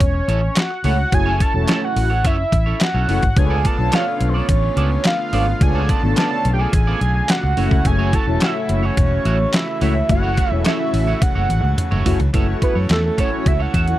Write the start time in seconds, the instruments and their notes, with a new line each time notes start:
Already playing: analog synth lead C#5
0.00 fingered electric bass E1, muted clean electric guitar stroke, kick, closed hi-hat
0.14 muted clean electric guitar stroke
0.28 fingered electric bass A1, clean electric guitar C#4 E4 A4 C#5, closed hi-hat
0.42 muted clean electric guitar stroke
0.56 analog synth lead F#5, snare, clap, closed hi-hat
0.70 muted clean electric guitar stroke
0.84 fingered electric bass C#2, analog polysynth A3 C#4 E4 F#4 C#5, clean electric guitar C#4 E4 A4 C#5, analog synth lead F#5, open hi-hat
0.98 muted clean electric guitar stroke
1.12 fingered electric bass F#1, analog polysynth A3 C#4 E4 F#4 C#5, analog synth lead G#5, muted clean electric guitar stroke, kick, closed hi-hat
1.26 clean electric guitar C#4 E4 A4 C#5
1.40 clean electric guitar C#4 E4 A4 C#5, analog synth lead A5, kick, closed hi-hat
1.54 fingered electric bass E1, analog polysynth A3 C#4 E4 F#4 C#5, muted clean electric guitar stroke
1.68 clean electric guitar C#4 E4 A4 C#5, snare, clap, closed hi-hat
1.82 analog synth lead F#5, muted clean electric guitar stroke
1.96 fingered electric bass A1, muted clean electric guitar stroke, open hi-hat
2.10 clean electric guitar C#4 E4 A4 C#5
2.24 fingered electric bass F#1, clean electric guitar C#4 E4 A4 C#5, analog synth lead E5, kick, closed hi-hat
2.38 muted clean electric guitar stroke
2.52 fingered electric bass A1, muted clean electric guitar stroke, kick, closed hi-hat
2.66 clean electric guitar C#4 E4 A4 C#5
2.80 analog synth lead F#5, muted clean electric guitar stroke, snare, clap, closed hi-hat
2.94 fingered electric bass B1, clean electric guitar C#4 E4 A4 C#5
3.08 fingered electric bass F#1, analog polysynth A3 C#4 E4 F#4 C#5, clean electric guitar C#4 E4 A4 C#5, open hi-hat
3.22 fingered electric bass G#1, muted clean electric guitar stroke, kick, closed hi-hat
3.36 fingered electric bass C#2, pipe organ D3 A3 B3 F4, analog polysynth B3 D4 F4 A4 C#5, analog synth lead G#5, muted clean electric guitar stroke, kick, closed hi-hat
3.50 clean electric guitar B3 F4 A4 D5
3.64 clean electric guitar B3 F4 A4 D5, analog synth lead A5, kick, closed hi-hat
3.78 fingered electric bass B1, analog polysynth B3 D4 F4 A4 C#5, muted clean electric guitar stroke
3.92 clean electric guitar B3 F4 A4 F5, analog synth lead F5, snare, clap, closed hi-hat
4.06 muted clean electric guitar stroke
4.20 fingered electric bass B1, muted clean electric guitar stroke, closed hi-hat
4.29 analog synth lead C5
4.34 clean electric guitar B3 F4 A4 D5, analog synth lead C#5
4.48 fingered electric bass A1, muted clean electric guitar stroke, kick, closed hi-hat
4.63 muted clean electric guitar stroke
4.76 fingered electric bass C#2, clean electric guitar B3 F4 A4 D5, closed hi-hat
4.91 muted clean electric guitar stroke
5.05 analog synth lead F5, snare, clap, closed hi-hat
5.19 muted clean electric guitar stroke
5.32 fingered electric bass G#1, analog polysynth B3 D4 F4 A4 C#5, clean electric guitar B3 F4 A4 D5, open hi-hat
5.47 muted clean electric guitar stroke
5.61 fingered electric bass C#2, pipe organ C#3, analog polysynth B3 D4 F4 A4 C#5, analog synth lead G#5, muted clean electric guitar stroke, kick, closed hi-hat
5.75 clean electric guitar B3 F4 A4 D5
5.89 clean electric guitar B3 F4 A4 D5, analog synth lead A5, kick, closed hi-hat
6.03 fingered electric bass G#1, analog polysynth B3 D4 F4 A4 C#5, muted clean electric guitar stroke
6.17 clean electric guitar B3 F4 A4 D5, analog synth lead A5, snare, clap, closed hi-hat
6.31 muted clean electric guitar stroke
6.45 fingered electric bass B1, muted clean electric guitar stroke, closed hi-hat
6.53 analog synth lead G5
6.59 clean electric guitar B3 F4 A4 D5, analog synth lead G#5
6.73 fingered electric bass A1, muted clean electric guitar stroke, kick, closed hi-hat
6.87 clean electric guitar B3 F4 A4 D5
7.01 fingered electric bass B1, muted clean electric guitar stroke, closed hi-hat
7.15 muted clean electric guitar stroke
7.29 analog synth lead F#5, snare, clap, closed hi-hat
7.43 fingered electric bass C#2, muted clean electric guitar stroke
7.57 fingered electric bass F#1, pipe organ E3 A3 F#4, analog polysynth A3 C#4 E4 F#4 C#5, clean electric guitar A3 E4 F#4 C#5, open hi-hat
7.71 fingered electric bass C#2, muted clean electric guitar stroke, kick
7.85 fingered electric bass F#1, analog synth lead G#5, muted clean electric guitar stroke, kick, closed hi-hat
7.99 clean electric guitar A3 E4 F#4 C#5
8.13 clean electric guitar A3 E4 F#4 C#5, analog synth lead A5, kick, closed hi-hat
8.27 fingered electric bass E1, analog polysynth A3 C#4 E4 F#4 C#5, muted clean electric guitar stroke
8.41 clean electric guitar A3 E4 F#4 E5, analog synth lead E5, snare, clap, closed hi-hat
8.55 muted clean electric guitar stroke
8.69 fingered electric bass F#1, muted clean electric guitar stroke, closed hi-hat
8.83 clean electric guitar A3 E4 F#4 C#5, analog synth lead C#5
8.97 fingered electric bass E1, kick, closed hi-hat
9.11 muted clean electric guitar stroke
9.25 fingered electric bass A1, clean electric guitar A3 E4 F#4 C#5, closed hi-hat
9.39 muted clean electric guitar stroke
9.54 analog synth lead E5, snare, clap, closed hi-hat
9.67 muted clean electric guitar stroke
9.81 fingered electric bass C#2, analog polysynth A3 C#4 E4 F#4 C#5, clean electric guitar A3 E4 F#4 C#5, open hi-hat
9.95 muted clean electric guitar stroke
10.09 fingered electric bass F#1, analog polysynth A3 C#4 E4 F#4 C#5, analog synth lead F#5, muted clean electric guitar stroke, kick, closed hi-hat
10.23 clean electric guitar A3 E4 F#4 C#5
10.37 clean electric guitar A3 E4 F#4 C#5, kick, closed hi-hat
10.51 fingered electric bass E1, analog polysynth A3 C#4 E4 F#4 C#5, analog synth lead E5, muted clean electric guitar stroke
10.65 clean electric guitar A3 E4 F#4 C#5, analog synth lead E5, snare, clap, closed hi-hat
10.80 muted clean electric guitar stroke
10.93 fingered electric bass A1, muted clean electric guitar stroke, open hi-hat
11.07 clean electric guitar A3 E4 F#4 C#5
11.22 analog synth lead F#5, muted clean electric guitar stroke, kick, closed hi-hat, high tom
11.35 fingered electric bass F#1, clean electric guitar A3 E4 F#4 C#5
11.49 fingered electric bass A1, muted clean electric guitar stroke, closed hi-hat, mid tom
11.64 fingered electric bass C#2, muted clean electric guitar stroke
11.77 muted clean electric guitar stroke, closed hi-hat, mid tom
11.91 fingered electric bass F#1, clean electric guitar A3 E4 F#4 C#5, mid tom
12.05 fingered electric bass F#1, analog polysynth A3 C#4 E4 F#4 C#5, clean electric guitar A3 E4 F#4 C#5, floor tom, open hi-hat
12.19 fingered electric bass C#2, muted clean electric guitar stroke, closed hi-hat, floor tom
12.33 fingered electric bass F#1, pipe organ E3 A3 C#4 F#4, analog polysynth A3 E4 F#4 B4, clean electric guitar C#4 E4 A4 C#5, kick, closed hi-hat
12.41 analog polysynth C#5
12.48 muted clean electric guitar stroke
12.62 analog synth lead B4, muted clean electric guitar stroke, kick, closed hi-hat
12.75 fingered electric bass F#2, clean electric guitar C#4 E4 A4 C#5
12.90 fingered electric bass E2, analog synth lead A4, snare, clap, closed hi-hat
13.04 analog synth lead A4, muted clean electric guitar stroke
13.17 analog polysynth A3 E4 F#4 C#5, clean electric guitar C#4 E4 A4 C#5, analog synth lead C#5, kick, closed hi-hat
13.46 fingered electric bass C#2, analog synth lead E5, muted clean electric guitar stroke, kick, closed hi-hat
13.60 clean electric guitar C#4 E4 A4 C#5, analog synth lead F#5
13.74 fingered electric bass E2, clean electric guitar C#4 E4 A4 E5, kick, closed hi-hat
13.88 analog polysynth A3 E4 F#4 C#5, muted clean electric guitar stroke, closed hi-hat